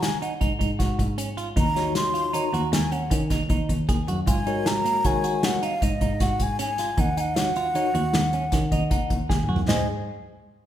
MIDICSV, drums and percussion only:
0, 0, Header, 1, 2, 480
1, 0, Start_track
1, 0, Tempo, 386349
1, 1951, Time_signature, 7, 2, 24, 8
1, 13245, End_track
2, 0, Start_track
2, 0, Title_t, "Drums"
2, 31, Note_on_c, 9, 38, 107
2, 31, Note_on_c, 9, 42, 79
2, 155, Note_off_c, 9, 38, 0
2, 155, Note_off_c, 9, 42, 0
2, 277, Note_on_c, 9, 42, 56
2, 401, Note_off_c, 9, 42, 0
2, 510, Note_on_c, 9, 42, 73
2, 513, Note_on_c, 9, 36, 96
2, 634, Note_off_c, 9, 42, 0
2, 637, Note_off_c, 9, 36, 0
2, 753, Note_on_c, 9, 36, 71
2, 756, Note_on_c, 9, 42, 59
2, 877, Note_off_c, 9, 36, 0
2, 880, Note_off_c, 9, 42, 0
2, 991, Note_on_c, 9, 36, 92
2, 991, Note_on_c, 9, 38, 31
2, 991, Note_on_c, 9, 42, 70
2, 1115, Note_off_c, 9, 36, 0
2, 1115, Note_off_c, 9, 38, 0
2, 1115, Note_off_c, 9, 42, 0
2, 1230, Note_on_c, 9, 36, 77
2, 1232, Note_on_c, 9, 42, 52
2, 1355, Note_off_c, 9, 36, 0
2, 1356, Note_off_c, 9, 42, 0
2, 1467, Note_on_c, 9, 42, 71
2, 1592, Note_off_c, 9, 42, 0
2, 1709, Note_on_c, 9, 42, 51
2, 1833, Note_off_c, 9, 42, 0
2, 1945, Note_on_c, 9, 42, 68
2, 1947, Note_on_c, 9, 36, 106
2, 2070, Note_off_c, 9, 42, 0
2, 2072, Note_off_c, 9, 36, 0
2, 2189, Note_on_c, 9, 38, 32
2, 2189, Note_on_c, 9, 42, 55
2, 2313, Note_off_c, 9, 38, 0
2, 2313, Note_off_c, 9, 42, 0
2, 2424, Note_on_c, 9, 38, 88
2, 2424, Note_on_c, 9, 42, 73
2, 2549, Note_off_c, 9, 38, 0
2, 2549, Note_off_c, 9, 42, 0
2, 2669, Note_on_c, 9, 42, 53
2, 2793, Note_off_c, 9, 42, 0
2, 2909, Note_on_c, 9, 42, 76
2, 3033, Note_off_c, 9, 42, 0
2, 3153, Note_on_c, 9, 42, 61
2, 3277, Note_off_c, 9, 42, 0
2, 3390, Note_on_c, 9, 38, 96
2, 3390, Note_on_c, 9, 42, 84
2, 3514, Note_off_c, 9, 38, 0
2, 3514, Note_off_c, 9, 42, 0
2, 3627, Note_on_c, 9, 42, 57
2, 3751, Note_off_c, 9, 42, 0
2, 3865, Note_on_c, 9, 42, 78
2, 3867, Note_on_c, 9, 36, 86
2, 3989, Note_off_c, 9, 42, 0
2, 3991, Note_off_c, 9, 36, 0
2, 4103, Note_on_c, 9, 38, 32
2, 4103, Note_on_c, 9, 42, 60
2, 4106, Note_on_c, 9, 36, 75
2, 4227, Note_off_c, 9, 38, 0
2, 4227, Note_off_c, 9, 42, 0
2, 4230, Note_off_c, 9, 36, 0
2, 4343, Note_on_c, 9, 42, 70
2, 4347, Note_on_c, 9, 36, 96
2, 4467, Note_off_c, 9, 42, 0
2, 4471, Note_off_c, 9, 36, 0
2, 4588, Note_on_c, 9, 36, 66
2, 4589, Note_on_c, 9, 42, 58
2, 4713, Note_off_c, 9, 36, 0
2, 4713, Note_off_c, 9, 42, 0
2, 4829, Note_on_c, 9, 42, 73
2, 4830, Note_on_c, 9, 36, 97
2, 4954, Note_off_c, 9, 36, 0
2, 4954, Note_off_c, 9, 42, 0
2, 5071, Note_on_c, 9, 42, 54
2, 5195, Note_off_c, 9, 42, 0
2, 5309, Note_on_c, 9, 42, 76
2, 5311, Note_on_c, 9, 36, 104
2, 5433, Note_off_c, 9, 42, 0
2, 5435, Note_off_c, 9, 36, 0
2, 5549, Note_on_c, 9, 42, 53
2, 5673, Note_off_c, 9, 42, 0
2, 5790, Note_on_c, 9, 38, 101
2, 5790, Note_on_c, 9, 42, 69
2, 5914, Note_off_c, 9, 38, 0
2, 5914, Note_off_c, 9, 42, 0
2, 6032, Note_on_c, 9, 42, 54
2, 6156, Note_off_c, 9, 42, 0
2, 6267, Note_on_c, 9, 42, 76
2, 6271, Note_on_c, 9, 36, 95
2, 6391, Note_off_c, 9, 42, 0
2, 6395, Note_off_c, 9, 36, 0
2, 6507, Note_on_c, 9, 42, 63
2, 6632, Note_off_c, 9, 42, 0
2, 6748, Note_on_c, 9, 38, 106
2, 6748, Note_on_c, 9, 42, 78
2, 6872, Note_off_c, 9, 38, 0
2, 6872, Note_off_c, 9, 42, 0
2, 6990, Note_on_c, 9, 42, 55
2, 7114, Note_off_c, 9, 42, 0
2, 7231, Note_on_c, 9, 36, 95
2, 7231, Note_on_c, 9, 42, 80
2, 7355, Note_off_c, 9, 36, 0
2, 7355, Note_off_c, 9, 42, 0
2, 7467, Note_on_c, 9, 42, 63
2, 7470, Note_on_c, 9, 36, 80
2, 7592, Note_off_c, 9, 42, 0
2, 7594, Note_off_c, 9, 36, 0
2, 7706, Note_on_c, 9, 38, 33
2, 7706, Note_on_c, 9, 42, 81
2, 7709, Note_on_c, 9, 36, 95
2, 7830, Note_off_c, 9, 38, 0
2, 7830, Note_off_c, 9, 42, 0
2, 7834, Note_off_c, 9, 36, 0
2, 7947, Note_on_c, 9, 42, 61
2, 7950, Note_on_c, 9, 36, 70
2, 8071, Note_off_c, 9, 42, 0
2, 8074, Note_off_c, 9, 36, 0
2, 8187, Note_on_c, 9, 38, 30
2, 8187, Note_on_c, 9, 42, 80
2, 8311, Note_off_c, 9, 38, 0
2, 8311, Note_off_c, 9, 42, 0
2, 8425, Note_on_c, 9, 38, 32
2, 8425, Note_on_c, 9, 42, 64
2, 8549, Note_off_c, 9, 38, 0
2, 8549, Note_off_c, 9, 42, 0
2, 8666, Note_on_c, 9, 42, 80
2, 8669, Note_on_c, 9, 36, 99
2, 8790, Note_off_c, 9, 42, 0
2, 8793, Note_off_c, 9, 36, 0
2, 8913, Note_on_c, 9, 42, 59
2, 9037, Note_off_c, 9, 42, 0
2, 9148, Note_on_c, 9, 38, 93
2, 9148, Note_on_c, 9, 42, 75
2, 9273, Note_off_c, 9, 38, 0
2, 9273, Note_off_c, 9, 42, 0
2, 9390, Note_on_c, 9, 42, 51
2, 9515, Note_off_c, 9, 42, 0
2, 9630, Note_on_c, 9, 42, 73
2, 9754, Note_off_c, 9, 42, 0
2, 9873, Note_on_c, 9, 42, 61
2, 9997, Note_off_c, 9, 42, 0
2, 10107, Note_on_c, 9, 38, 94
2, 10107, Note_on_c, 9, 42, 70
2, 10231, Note_off_c, 9, 38, 0
2, 10231, Note_off_c, 9, 42, 0
2, 10348, Note_on_c, 9, 42, 51
2, 10472, Note_off_c, 9, 42, 0
2, 10585, Note_on_c, 9, 38, 32
2, 10585, Note_on_c, 9, 42, 71
2, 10590, Note_on_c, 9, 36, 91
2, 10709, Note_off_c, 9, 38, 0
2, 10709, Note_off_c, 9, 42, 0
2, 10714, Note_off_c, 9, 36, 0
2, 10830, Note_on_c, 9, 36, 77
2, 10831, Note_on_c, 9, 42, 60
2, 10955, Note_off_c, 9, 36, 0
2, 10956, Note_off_c, 9, 42, 0
2, 11068, Note_on_c, 9, 42, 76
2, 11071, Note_on_c, 9, 36, 98
2, 11193, Note_off_c, 9, 42, 0
2, 11195, Note_off_c, 9, 36, 0
2, 11310, Note_on_c, 9, 42, 57
2, 11311, Note_on_c, 9, 36, 76
2, 11434, Note_off_c, 9, 42, 0
2, 11436, Note_off_c, 9, 36, 0
2, 11553, Note_on_c, 9, 36, 85
2, 11553, Note_on_c, 9, 38, 56
2, 11677, Note_off_c, 9, 36, 0
2, 11677, Note_off_c, 9, 38, 0
2, 11719, Note_on_c, 9, 47, 62
2, 11843, Note_off_c, 9, 47, 0
2, 11879, Note_on_c, 9, 43, 88
2, 12003, Note_off_c, 9, 43, 0
2, 12038, Note_on_c, 9, 38, 89
2, 12038, Note_on_c, 9, 43, 89
2, 12038, Note_on_c, 9, 55, 69
2, 12162, Note_off_c, 9, 38, 0
2, 12162, Note_off_c, 9, 43, 0
2, 12162, Note_off_c, 9, 55, 0
2, 13245, End_track
0, 0, End_of_file